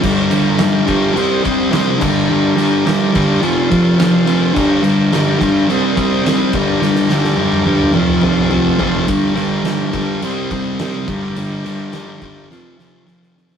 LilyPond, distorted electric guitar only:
\new Staff \with { instrumentName = "Distorted electric guitar" } { \clef bass \time 4/4 \key g \minor \tempo 4 = 106 <g, d g>8 <g, d g>8 <g, d g>8 <g, d g>8 <c g c'>8 <c g c'>8 <c g c'>8 <g, d g>8 | <g, d g>8 <g, d g>8 <g, d g>8 <g, d g>8 <f, c f>8 <f, c f>8 <f, c f>8 <f, c f>8 | <g, d g>8 <g, d g>8 <g, d g>8 <g, d g>8 <c g c'>8 <c g c'>8 <c g c'>8 <g, d g>8 | <g, d g>8 <g, d g>8 <g, d g>8 <g, d g>8 <f, c f>8 <f, c f>8 <f, c f>8 <f, c f>8 |
<g, d g>8 <g, d g>8 <g, d g>8 <g, d g>8 <c g c'>8 <c g c'>8 <c g c'>8 <g, d g>8 | <g, d g>8 <g, d g>8 <g, d g>8 <g, d g>8 <f, c f>8 <f, c f>8 <f, c f>8 <f, c f>8 | }